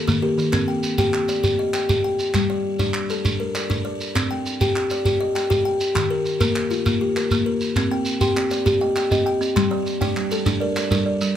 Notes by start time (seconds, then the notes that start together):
Already playing: A4 A#4
0.07 D#3 A#3, shekere
0.22 G4 A#4
0.38 D#3, shekere
0.53 C4 A#4, clap, shekere
0.68 G5
0.83 shekere
0.98 G4 G5, shekere
1.14 clap
1.29 D5, clap, shekere
1.44 G4, shekere
1.59 D#5
1.74 G5, clap, shekere
1.89 G4, shekere
2.04 G5
2.19 shekere
2.34 G3, clap, shekere
2.50 D5
2.79 D4 D5, shekere
2.94 clap
3.10 A4, clap, shekere
3.25 D4, shekere
3.40 A#4
3.55 D5, clap, shekere
3.70 D4, shekere
3.85 D5
4.01 shekere
4.15 C4, clap, shekere
4.31 G5
4.46 shekere
4.61 G4 G5, shekere
4.76 clap
4.90 D5, clap, shekere
5.05 G4, shekere
5.21 D#5
5.35 G5, clap, shekere
5.50 G4, shekere
5.65 G5
5.81 shekere
5.95 D#3, clap, shekere
6.10 A#4
6.25 shekere
6.41 A#3 A#4, shekere
6.56 clap
6.71 F4, shekere
6.86 A#3, shekere
7.01 G4
7.16 A#4, clap, shekere
7.31 A#3, shekere
7.46 A#4
7.61 shekere
7.76 C4, clap, shekere
7.91 C4 G5
8.05 shekere
8.21 G4 G5 C6, shekere
8.37 C4, clap
8.50 D5, clap, shekere
8.66 G4, shekere
8.81 D#5 G5
8.96 G5, clap, shekere
9.11 C4 G4 D#5, shekere
9.26 G5
9.41 C4, shekere
9.56 G3 C6, clap, shekere
9.71 G3 D5
9.86 shekere
10.01 D4 D5 G5, shekere
10.16 G3, clap
10.31 A4, clap, shekere
10.46 D4, shekere
10.60 A#4 D5
10.76 D5, clap, shekere
10.91 G3 D4 A#4, shekere
11.06 D5
11.21 G3, shekere